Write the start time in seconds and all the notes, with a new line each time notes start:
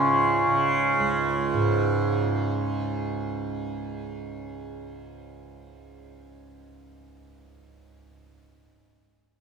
Already playing: C#2 G#2 C#3 C#4 F4
0.47 C#3
1.00 C#2
1.54 G#2